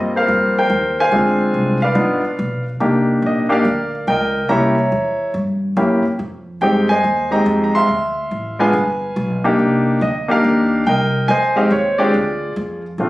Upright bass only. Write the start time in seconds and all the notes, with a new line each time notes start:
Already playing: G2
0.28 F2
0.70 D#2
1.12 D2
1.54 C2
1.95 G1
2.24 muted upright bass stroke
2.39 B1
2.80 C2
3.22 A#1
3.65 D2
4.07 C#2
4.49 C2
4.92 E2
5.34 G2
5.77 F#2
6.04 muted upright bass stroke
6.19 F2
6.61 G2
7.04 D#2
7.46 F2
7.88 D2
8.31 A1
8.73 G1
9.16 B1
9.59 C2
10.01 D2
10.44 D#2
10.86 C2
11.29 F2
11.71 D#2
12.14 D2
12.56 F2
12.98 A#1